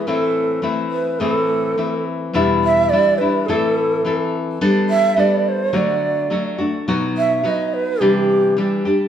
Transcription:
0.07 nylon-string guitar A2 E3 A3 C4 E4, shakuhachi A4
0.62 nylon-string guitar E3 A3 C4 E4
0.91 shakuhachi B4
1.20 nylon-string guitar A2 E3 A3 C4 E4, shakuhachi G#4
1.34 shakuhachi A4
1.77 nylon-string guitar E3 A3 C4 E4
2.33 nylon-string guitar E2 B2 E3 G3 D4 E4
2.64 shakuhachi E5
2.90 nylon-string guitar E3 G3 D4 E4, shakuhachi D5
3.18 nylon-string guitar G3 D4 E4, shakuhachi B4
3.23 nylon-string guitar E3
3.46 nylon-string guitar A2 E3 C4 E4 A4, shakuhachi G#4
3.61 shakuhachi A4
4.05 nylon-string guitar E3 C4 E4 A4
4.61 nylon-string guitar G3 B3 D4 A4
4.90 shakuhachi E5
5.16 nylon-string guitar G3 B3 D4 A4, shakuhachi D5
5.49 shakuhachi C5
5.73 nylon-string guitar D3 F#3 A3 D4 F#4, shakuhachi D5
6.30 nylon-string guitar F#3 A3 D4 F#4
6.58 nylon-string guitar A3 D4 F#4
6.88 nylon-string guitar B2 F#3 B3 D#4 F#4
7.17 shakuhachi E5
7.43 nylon-string guitar F#3 B3 D#4 F#4, shakuhachi E5
7.48 shakuhachi D#5
7.74 shakuhachi B4
8.01 nylon-string guitar C3 E3 G3 D4 G4, shakuhachi G4
8.57 nylon-string guitar E3 G3 D4 G4
8.85 nylon-string guitar G3 D4 G4

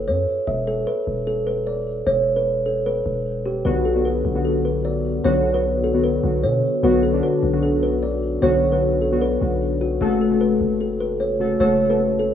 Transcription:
0.08 808-style bass F#2, kalimba C#5
0.47 808-style bass E1, kalimba E5
0.67 kalimba A4
0.87 kalimba B4
1.07 808-style bass E1
1.27 kalimba A4
1.47 kalimba B4
1.67 kalimba D5
2.07 808-style bass E1, kalimba C#5
2.36 kalimba B4
2.66 kalimba A4
2.86 kalimba B4
3.06 808-style bass E1
3.46 kalimba G4
3.65 808-style bass B1, synth keys D3 B3 F#4, kalimba B4
3.85 kalimba A4
3.94 synth keys D3 B3 F#4
4.05 kalimba B4
4.25 808-style bass B1
4.34 synth keys D3 B3 F#4
4.45 kalimba A4
4.65 kalimba B4
4.85 kalimba D5
5.24 808-style bass B1, synth keys D3 B3 F#4, kalimba C#5
5.53 synth keys D3 B3 F#4, kalimba B4
5.84 kalimba A4
5.93 synth keys D3 B3 F#4
6.04 kalimba B4
6.23 808-style bass B1, synth keys D3 B3 F#4
6.43 808-style bass B2, kalimba C#5
6.82 808-style bass B1, synth keys D3 B3 F#4, kalimba B4
7.03 kalimba A4
7.12 synth keys D3 B3 D4
7.23 kalimba B4
7.43 808-style bass B1
7.52 synth keys D3 B3 F#4
7.63 kalimba A4
7.83 kalimba B4
8.03 kalimba D5
8.41 808-style bass B1, synth keys D3 B3 F#4, kalimba C#5
8.71 synth keys D3 B3 F#4, kalimba B4
9.02 kalimba A4
9.11 synth keys D3 B3 F#4
9.22 kalimba B4
9.41 808-style bass B1, synth keys D3 B3 F#4
9.81 kalimba F#4
10.00 808-style bass F#1, synth keys C#3 A3 F#4 A4, kalimba F#4
10.21 kalimba A4
10.30 synth keys C#3 A3 F#4 A4
10.41 kalimba B4
10.61 808-style bass F#1
10.81 kalimba A4
11.00 kalimba B4
11.20 kalimba C#5
11.39 synth keys C#3 A3 F#4 A4
11.59 808-style bass F#1, synth keys C#3 A3 F#4 A4, kalimba C#5
11.89 synth keys C#3 A3 F#4 A4, kalimba B4
12.19 kalimba A4

